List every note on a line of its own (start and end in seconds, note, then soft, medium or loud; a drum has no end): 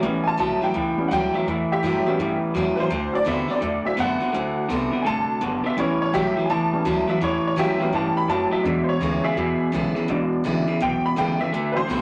0.02 0.24 A1 medium
0.02 0.36 A2 medium
0.02 0.72 A2 loud
0.02 0.36 E3 medium
0.02 0.30 G3 medium
0.02 0.30 B3 medium
0.02 0.30 C#4 medium
0.24 0.25 G#5 medium
0.24 0.39 A5 loud
0.24 muted upright bass stroke medium
0.37 0.61 B1 medium
0.37 0.59 A2 medium
0.37 0.60 E3 loud
0.37 0.60 F#3 medium
0.37 0.60 G3 medium
0.37 0.61 C#4 medium
0.37 0.60 E4 medium
0.37 0.62 A5 medium
0.61 0.73 A2 medium
0.61 0.73 F#3 medium
0.61 0.75 C#4 soft
0.61 0.74 E4 medium
0.61 1.10 G5 medium
0.61 muted upright bass stroke medium
0.74 0.97 C#2 medium
0.74 1.44 E2 medium
0.74 1.08 A2 medium
0.74 1.08 E3 medium
0.98 1.09 G3 medium
0.98 1.09 B3 soft
0.98 1.10 C#4 medium
0.98 muted upright bass stroke medium
1.08 1.33 D2 medium
1.08 1.31 A2 medium
1.08 1.33 E3 medium
1.08 1.32 F#3 medium
1.08 1.33 G3 loud
1.08 1.33 C#4 medium
1.08 1.11 F#5 medium
1.13 1.33 E4 loud
1.13 1.34 G5 loud
1.34 1.45 A2 medium
1.34 1.46 F#3 medium
1.34 1.47 C#4 soft
1.34 1.46 E4 medium
1.34 1.69 E5 medium
1.34 muted upright bass stroke medium
1.47 1.69 E2 medium
1.47 1.80 A2 medium
1.47 2.16 A2 medium
1.47 1.81 E3 medium
1.70 2.39 G4 medium
1.70 2.41 E5 loud
1.70 muted upright bass stroke medium
1.82 2.05 F#2 medium
1.82 2.04 A2 medium
1.82 2.05 E3 medium
1.82 2.04 F#3 loud
1.82 2.05 G3 medium
1.82 2.06 C#4 loud
1.82 2.05 E4 loud
2.06 2.17 A2 medium
2.06 2.18 F#3 medium
2.06 2.87 G3 medium
2.06 2.87 B3 medium
2.06 2.87 C#4 medium
2.06 2.19 C#4 soft
2.06 2.18 E4 medium
2.06 muted upright bass stroke medium
2.19 2.88 E2 medium
2.19 2.41 G2 medium
2.19 2.52 A2 medium
2.19 2.52 E3 loud
2.42 muted upright bass stroke medium
2.54 2.77 E2 medium
2.54 2.75 A2 medium
2.54 2.76 E3 medium
2.54 2.75 F#3 medium
2.54 2.77 G3 medium
2.54 2.77 C#4 medium
2.54 2.76 E4 loud
2.76 2.89 A2 medium
2.76 2.90 F#3 medium
2.76 2.90 C#4 soft
2.76 2.89 E4 medium
2.76 2.77 B4 medium
2.76 muted upright bass stroke medium
2.80 3.14 C5 medium
2.90 3.12 D2 medium
2.90 3.24 D3 medium
2.90 3.23 D3 medium
2.90 3.24 A3 medium
3.12 3.59 F#3 medium
3.12 3.60 C4 medium
3.12 3.60 E4 medium
3.12 3.27 D5 loud
3.12 muted upright bass stroke medium
3.25 3.48 D#2 medium
3.25 3.47 D3 medium
3.25 3.48 A3 medium
3.25 3.47 B3 loud
3.25 3.48 C4 loud
3.25 3.47 F#4 loud
3.25 3.49 E5 medium
3.48 3.59 D3 medium
3.48 3.60 B3 medium
3.48 3.62 C4 medium
3.48 3.61 F#4 medium
3.48 3.85 D5 medium
3.48 muted upright bass stroke medium
3.60 3.84 E2 medium
3.60 4.31 A2 medium
3.60 3.95 D3 medium
3.60 3.95 A3 loud
3.85 3.96 F#3 medium
3.85 3.97 C4 soft
3.85 3.97 E4 medium
3.85 3.98 E5 loud
3.85 muted upright bass stroke medium
3.97 4.20 F#2 medium
3.97 4.18 D3 medium
3.97 4.20 D3 medium
3.97 4.20 A3 medium
3.97 4.18 B3 loud
3.97 4.20 C4 medium
3.97 4.19 F#4 loud
3.97 4.69 F#5 loud
4.20 4.31 D3 medium
4.20 4.32 B3 medium
4.20 4.34 C4 soft
4.20 4.33 F#4 medium
4.32 4.55 D2 medium
4.32 4.66 D3 medium
4.32 4.68 D3 medium
4.32 4.60 F#3 medium
4.32 4.67 A3 loud
4.32 4.61 C4 medium
4.32 4.61 E4 medium
4.69 4.92 C2 medium
4.69 4.90 D3 medium
4.69 5.04 D3 medium
4.69 5.04 A3 loud
4.69 4.90 B3 loud
4.69 5.05 C4 loud
4.69 5.05 F#4 loud
4.91 5.03 D3 medium
4.91 5.04 B3 medium
4.91 muted upright bass stroke medium
5.02 5.41 C3 medium
5.02 5.38 D3 medium
5.02 5.38 A3 loud
5.02 5.05 G#5 medium
5.07 5.28 G1 medium
5.07 5.63 A5 loud
5.30 muted upright bass stroke medium
5.41 5.64 F#1 medium
5.41 5.76 B2 medium
5.41 5.62 D3 medium
5.41 5.62 B3 medium
5.64 5.76 D3 medium
5.64 5.76 B3 medium
5.64 5.78 E5 loud
5.64 muted upright bass stroke medium
5.77 6.00 A1 medium
5.77 6.10 A2 medium
5.77 6.47 A2 medium
5.77 6.10 E3 medium
5.77 6.04 G3 medium
5.77 6.04 B3 medium
5.77 6.04 C#4 medium
5.77 6.00 C#5 medium
6.01 6.14 C#5 medium
6.01 muted upright bass stroke medium
6.13 6.35 B1 medium
6.13 6.34 A2 medium
6.13 6.35 E3 medium
6.13 6.34 F#3 loud
6.13 6.36 G3 loud
6.13 6.36 C#4 loud
6.13 6.36 E4 loud
6.13 6.35 G4 medium
6.13 6.36 E5 medium
6.36 6.48 A2 medium
6.36 6.48 F#3 medium
6.36 6.50 C#4 soft
6.36 6.50 E4 medium
6.36 muted upright bass stroke medium
6.46 6.71 C#2 medium
6.46 6.82 A2 medium
6.46 6.49 G#5 medium
6.50 7.19 E2 medium
6.50 6.83 E3 medium
6.50 7.07 A5 loud
6.73 6.84 G3 medium
6.73 6.84 B3 soft
6.73 6.85 C#4 medium
6.73 muted upright bass stroke soft
6.85 7.07 D2 loud
6.85 7.06 A2 medium
6.85 7.07 E3 loud
6.85 7.06 F#3 medium
6.85 7.07 G3 loud
6.85 7.08 C#4 loud
6.85 7.07 E4 loud
7.08 7.19 A2 medium
7.08 7.20 F#3 medium
7.08 7.21 C#4 medium
7.08 7.20 E4 medium
7.08 7.21 E5 medium
7.21 7.43 E2 medium
7.21 7.54 A2 medium
7.21 7.90 A2 medium
7.21 7.54 E3 loud
7.21 7.45 C#5 loud
7.44 7.58 C#5 medium
7.44 muted upright bass stroke medium
7.56 7.79 A2 medium
7.56 7.77 A2 medium
7.56 7.78 E3 medium
7.56 7.78 F#3 loud
7.56 7.79 G3 medium
7.56 7.79 C#4 loud
7.56 7.78 E4 loud
7.56 7.78 G4 medium
7.56 7.80 E5 loud
7.80 7.92 A2 medium
7.80 7.92 F#3 medium
7.80 8.61 B3 medium
7.80 8.61 C#4 medium
7.80 7.93 C#4 medium
7.80 7.92 E4 medium
7.80 8.61 G4 medium
7.80 muted upright bass stroke medium
7.93 8.27 G2 medium
7.93 8.15 G2 medium
7.93 8.26 A2 medium
7.93 8.26 E3 loud
7.93 8.16 A5 medium
8.15 8.29 B5 loud
8.15 muted upright bass stroke medium
8.28 8.50 F#2 loud
8.28 8.64 F#2 medium
8.28 8.49 A2 medium
8.28 8.50 F#3 medium
8.28 8.51 A5 medium
8.51 8.63 A2 medium
8.51 8.63 F#3 medium
8.51 8.87 E5 medium
8.51 muted upright bass stroke medium
8.63 8.87 E2 medium
8.63 8.98 E2 medium
8.63 9.34 E2 medium
8.63 8.98 B2 loud
8.63 8.91 F#3 medium
8.63 8.91 G#3 medium
8.63 8.91 D4 medium
8.84 8.86 C5 medium
8.84 muted upright bass stroke medium
8.89 9.23 C#5 medium
9.00 9.23 D2 medium
9.00 9.21 E2 medium
9.00 9.21 C#3 loud
9.00 9.35 D3 medium
9.00 9.36 G#3 medium
9.00 9.36 B3 medium
9.00 9.36 E4 loud
9.24 9.35 E2 medium
9.24 9.36 C#3 medium
9.24 9.91 G#4 medium
9.24 9.94 E5 loud
9.36 9.59 E2 medium
9.36 9.70 E2 medium
9.36 9.70 B2 medium
9.36 10.06 B2 medium
9.60 muted upright bass stroke medium
9.72 9.95 B1 loud
9.72 9.93 E2 medium
9.72 9.93 C#3 medium
9.72 9.94 D3 medium
9.72 9.95 G#3 medium
9.72 9.95 B3 medium
9.72 9.95 E4 loud
9.94 10.07 E2 medium
9.94 10.07 C#3 medium
9.94 10.09 B3 medium
9.94 10.08 E4 medium
9.94 muted upright bass stroke medium
10.08 10.31 G#1 medium
10.08 10.78 E2 medium
10.08 10.42 E2 medium
10.08 10.42 B2 loud
10.08 10.65 F#3 medium
10.08 10.65 G#3 soft
10.08 10.66 D4 medium
10.32 muted upright bass stroke medium
10.44 10.67 A1 medium
10.44 10.65 E2 medium
10.44 10.65 C#3 medium
10.44 10.66 D3 medium
10.44 10.67 G#3 medium
10.44 10.67 B3 medium
10.44 10.66 E4 loud
10.67 10.79 E2 medium
10.67 10.79 C#3 medium
10.67 10.81 B3 soft
10.67 10.80 E4 medium
10.67 muted upright bass stroke medium
10.80 11.03 B1 medium
10.80 11.14 E2 medium
10.80 11.50 B2 medium
10.80 11.14 B2 medium
10.80 11.04 G5 loud
11.04 11.17 B5 loud
11.04 muted upright bass stroke medium
11.16 11.39 G#1 loud
11.16 11.37 E2 medium
11.16 11.37 C#3 medium
11.16 11.38 D3 medium
11.16 11.39 G#3 loud
11.16 11.39 B3 loud
11.16 11.39 E4 loud
11.16 11.40 G5 medium
11.39 11.51 E2 medium
11.39 11.51 C#3 medium
11.39 11.53 B3 medium
11.39 11.52 E4 medium
11.39 11.75 E5 loud
11.39 muted upright bass stroke medium
11.52 11.75 A1 medium
11.52 11.86 D3 medium
11.52 11.88 D3 medium
11.52 11.86 A3 loud
11.72 12.02 E3 medium
11.72 12.02 F#3 medium
11.72 12.02 C4 medium
11.72 11.74 B4 medium
11.76 12.02 C5 loud
11.76 muted upright bass stroke soft
11.87 12.02 B1 loud
11.87 12.02 D3 medium
11.87 12.02 A3 loud
11.87 12.02 B3 medium
11.87 12.02 C4 medium
11.87 12.02 F#4 loud